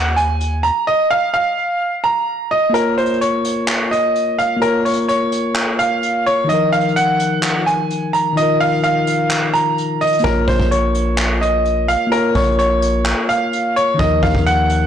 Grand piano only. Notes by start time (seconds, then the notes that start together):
Already playing: F#5
0.16 G#5
0.63 A#5
0.87 D#5
1.11 F5
1.34 F5
2.04 A#5
2.51 D#5
2.74 A#4
2.98 C5
3.21 C#5
3.91 D#5
4.39 F5
4.62 A#4
4.85 C#5
5.08 C#5
5.79 F5
6.26 C#5
6.49 D#5
6.72 F5
6.96 F#5
7.66 G#5
8.13 A#5
8.37 D#5
8.60 F5
8.84 F5
9.54 A#5
10.01 D#5
10.24 A#4
10.48 C5
10.71 C#5
11.41 D#5
11.88 F5
12.12 A#4
12.35 C#5
12.59 C#5
13.29 F5
13.76 C#5
13.99 D#5
14.23 F5
14.46 F#5